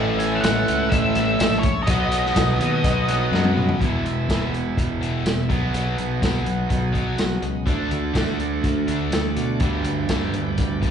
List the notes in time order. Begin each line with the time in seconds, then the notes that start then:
Already playing: A1 A2 E3 A3 C#4 E4 A4 E5
0.19 G#5, closed hi-hat
0.35 E5
0.40 A1 A2 E3 F#5, closed hi-hat, tambourine, cowbell
0.45 A3, snare
0.68 C#2, closed hi-hat
0.89 A1 E5, kick, closed hi-hat, cowbell
1.15 A2 E3 A3, snare, closed hi-hat
1.25 E5
1.39 A#1, snare, closed hi-hat, tambourine, cowbell
1.59 C#5
1.63 kick, closed hi-hat
1.83 D#5
1.87 B1 B2 F#3 B3 D#4 F#4 D#5, kick, closed hi-hat, cowbell
2.12 closed hi-hat
2.26 snare
2.36 B1, kick, snare, closed hi-hat, tambourine, cowbell
2.59 D#2 B2 F#3 B3, closed hi-hat
2.84 B1, kick, closed hi-hat, cowbell
3.08 snare, closed hi-hat
3.31 F#2 B2 F#3 B3, snare, cowbell
3.45 high tom
3.58 mid tom
3.69 floor tom
3.81 E1 E2 B2 E3 B3 E4 G#4 E5, kick, closed hi-hat
4.04 E1 E2 B2, closed hi-hat
4.29 E1 E2 B2 E3, kick, snare, closed hi-hat, tambourine
4.54 E2 B2, closed hi-hat
4.78 E1 E2 B2, kick, closed hi-hat
5.01 E1 E2 B2 E3, closed hi-hat
5.26 E1 E2 B2, snare, closed hi-hat, tambourine
5.48 B1 B2 F#3 B3 F#4 G#4 D#5, kick, closed hi-hat
5.74 B1 B2 F#3 B3, closed hi-hat
5.98 B1 B2 F#3, closed hi-hat
6.22 B1 B2 F#3 B3, kick, snare, closed hi-hat, tambourine
6.45 B1 B2 F#3, closed hi-hat
6.69 B1 B2 F#3, kick, closed hi-hat
6.92 B2 F#3 B3, kick, closed hi-hat
7.17 B1 B2 F#3, snare, closed hi-hat, tambourine
7.42 C#2 B2 F#3, closed hi-hat
7.66 D2 D3 A3 D4 F#4 D5, kick, closed hi-hat
7.90 D2 D3 A3, closed hi-hat
8.14 D2 D3 A3 D4, kick, snare, closed hi-hat, tambourine
8.40 D3 A3, closed hi-hat
8.63 D2 D3 A3, kick, closed hi-hat
8.87 D2 D3 A3 D4, closed hi-hat
9.12 D2 D3 A3, snare, closed hi-hat, tambourine
9.36 B2 D3 A3, closed hi-hat
9.60 D2 G2 D3 G3 B3 D4 G4 D5, kick, closed hi-hat
9.84 D2 G2 D3, closed hi-hat
10.09 D2 G2 D3 G3, kick, snare, closed hi-hat, tambourine
10.33 D2 G2 D3, closed hi-hat
10.58 D2 G2 D3, kick, closed hi-hat
10.82 G2 D3 G3, kick, closed hi-hat